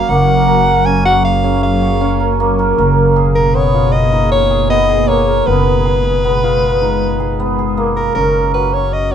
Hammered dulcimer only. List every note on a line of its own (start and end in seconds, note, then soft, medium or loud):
0.00 0.86 C#4 medium
0.00 1.05 F#4 medium
0.00 0.47 A#4 medium
0.09 2.40 A#3 medium
0.48 2.20 A#4 medium
0.86 1.43 C#4 medium
1.06 1.81 F#4 medium
1.44 2.00 C#4 medium
1.82 3.80 F#4 medium
2.01 5.87 C#4 medium
2.20 2.59 A#4 medium
2.40 2.78 A#3 medium
2.59 3.61 A#4 medium
2.79 3.61 A#3 medium
3.16 4.50 G#4 medium
3.55 4.69 B3 medium
3.74 6.43 F4 medium
4.12 6.81 D#4 medium
4.51 4.89 G#4 medium
4.70 5.14 B3 medium
4.89 5.85 G#4 medium
5.08 5.53 A#3 medium
5.27 5.53 A#4 medium
5.47 6.24 B3 medium
5.85 7.19 G#4 medium
6.24 7.39 B3 medium
6.43 8.60 F4 medium
6.82 9.15 D#4 medium
7.20 7.58 G#4 medium
7.40 7.83 B3 medium
7.59 9.15 G#4 medium
7.77 9.15 A#3 medium
7.97 9.15 A#4 medium
8.15 8.73 C#4 medium
8.54 9.11 F#4 medium
8.73 9.15 C#4 medium
9.11 9.15 F#4 medium